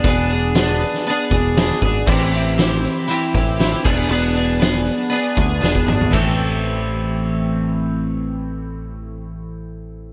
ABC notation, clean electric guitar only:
X:1
M:4/4
L:1/8
Q:1/4=118
K:Am
V:1 name="Clean electric guitar"
[B,D^G] [DG] [B,DG]2 [B,DG] [DG] [B,DG] [DG] | [E,CEG] [CEG] [E,CEG]2 [E,CEG] [CEG] [E,CEG] [B,D^G] | [B,D^G] [DG] [B,DG]2 [B,DG] [DG] [B,DG] [DG] | [E,A,CG]8- |
[E,A,CG]8 |]